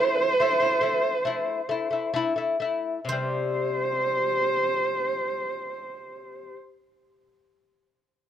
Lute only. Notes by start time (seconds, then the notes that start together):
0.00 A3 E4
0.40 A3 E4
0.60 A3 E4
0.81 A3 E4
1.25 A3 E4
1.69 A3 E4
1.91 A3 E4
2.14 A3 E4
2.36 A3 E4
2.60 A3 E4
3.05 C3
3.12 G3